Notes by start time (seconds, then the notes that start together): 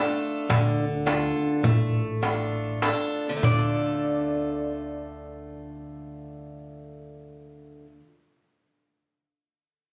Already playing: A3 D4 F4 A4 D5
0.49 D2 D3, darbuka tek, darbuka dum
0.79 darbuka tek
1.06 D4 F4 A4, darbuka tek
1.63 A1 A3, darbuka dum
1.93 darbuka tek
2.22 D4 F4 A4, darbuka tek
2.52 darbuka tek
2.82 D4 F4 A4, darbuka tek
3.29 D3
3.37 A3
3.43 D2 D4 D5, darbuka dum
3.51 F4
3.59 A4